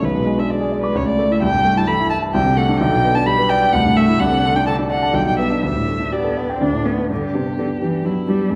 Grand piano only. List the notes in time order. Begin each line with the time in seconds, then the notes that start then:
0.03 B1
0.15 B2
0.26 G#3
0.38 D4
0.50 D5
0.60 G#4
0.72 D5
0.83 D6
0.95 C#2
1.07 C#3
1.18 A3
1.30 E4
1.42 C2
1.53 G2
1.65 A3
1.76 E4
1.88 A4
2.00 E4
2.11 E5
2.22 A5
2.34 C2
2.46 C3
2.57 A3
2.69 D4
2.81 B1
2.92 B2
3.04 B3
3.16 D4
3.27 G4
3.39 B4
3.50 D5
3.62 G5
3.74 C2
3.85 G2
3.97 A3
4.08 E4
4.20 C2
4.31 C3
4.43 A3
4.55 D4
4.67 A4
4.79 D4
4.90 D5
5.02 A5
5.14 B1
5.26 B2
5.38 B3
5.50 D4
5.63 D2
5.75 A2
5.88 A3
6.00 D4
6.13 G4
6.24 A4
6.37 D5
6.50 G5
6.61 D2
6.73 A2
6.85 A3
6.98 D4
7.10 G2
7.34 B3 D4 G4
7.58 B3 D4 G4
7.81 B3 D4 G4
8.04 B3 D4 G4
8.28 B3 D4 G4
8.51 F#2